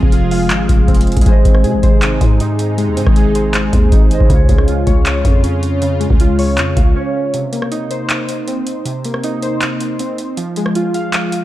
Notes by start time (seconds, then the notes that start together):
Already playing: C3 F3 G#3 C4 F4 G#4 C5
0.03 F1, kick
0.12 F4, closed hi-hat
0.31 F5, open hi-hat
0.50 G#1, clap, closed hi-hat
0.69 F1, kick, closed hi-hat
0.88 F1 C4, kick, closed hi-hat
0.95 closed hi-hat
1.01 closed hi-hat
1.07 closed hi-hat
1.12 closed hi-hat
1.17 C2, kick, closed hi-hat
1.21 G#3 G#4, closed hi-hat
1.26 G#1 C3 G#3 D#4 C5, kick, closed hi-hat
1.32 D#5
1.45 G#1 C4, kick, closed hi-hat
1.55 cross-stick
1.64 C3 G#4, closed hi-hat
1.74 G#1
1.83 G#1 C5, kick, closed hi-hat
2.02 clap, closed hi-hat
2.21 G#2, kick, closed hi-hat
2.40 D#4, closed hi-hat
2.59 closed hi-hat
2.78 G#3, closed hi-hat
2.87 D#2
2.97 G#2 C4, closed hi-hat
3.07 G#1, kick, cross-stick
3.16 G#4, closed hi-hat
3.35 C5, closed hi-hat
3.54 clap, closed hi-hat
3.73 D#2, kick, closed hi-hat
3.92 G#1 D#4, kick, closed hi-hat
4.09 G#3 G#4 C5, closed hi-hat
4.14 D#5
4.20 G#1, kick
4.25 C#3 G#3
4.29 C#2 C#3 F4, kick, closed hi-hat
4.35 C#5
4.49 C#2 G#3, kick, closed hi-hat
4.58 cross-stick
4.68 F4, closed hi-hat
4.87 C#2 C#5, kick, closed hi-hat
5.06 clap, closed hi-hat
5.25 F2, kick, closed hi-hat
5.43 C#4, closed hi-hat
5.63 closed hi-hat
5.81 C#3, closed hi-hat
6.00 G#3, closed hi-hat
6.10 C#2, kick
6.20 F4, closed hi-hat
6.39 C#5, open hi-hat
6.58 F2, clap, closed hi-hat
6.76 C#2 F5, kick, closed hi-hat
6.95 C#4 C#5
7.34 C3, closed hi-hat
7.52 A#3, closed hi-hat
7.62 cross-stick
7.71 D#4, closed hi-hat
7.91 C5, closed hi-hat
8.10 clap, closed hi-hat
8.29 closed hi-hat
8.47 C4, closed hi-hat
8.67 closed hi-hat
8.85 C3, closed hi-hat
9.05 A#3, closed hi-hat
9.14 cross-stick
9.24 D#4, closed hi-hat
9.43 C5, closed hi-hat
9.62 clap, closed hi-hat
9.80 closed hi-hat
9.99 C4, closed hi-hat
10.18 closed hi-hat
10.37 F3, closed hi-hat
10.56 G#3, closed hi-hat
10.66 cross-stick
10.75 F4, closed hi-hat
10.94 F5, closed hi-hat
11.13 clap, closed hi-hat
11.32 closed hi-hat